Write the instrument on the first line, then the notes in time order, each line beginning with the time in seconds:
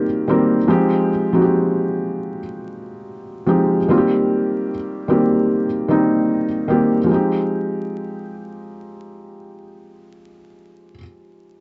felt piano
Already playing: D#3 G3 A#3 C4 G4
0.28 D#3 G3 A#3 C4 A#4
0.68 F3 G#3 C4 D#4 G4
1.33 F3 G#3 C4 D#4 F#4
1.42 G4
3.46 F3 G#3 C4 D#4 G4
3.88 D#3 G3 A#3 C4 F4
3.98 G4
5.08 D#3 G3 A#3 C4 G4
5.88 D#3 G3 A#3 C4 D#4
6.68 D#3 G3 A#3 C4 G4
7.04 F3 G#3
7.09 C4 D#4
7.14 G4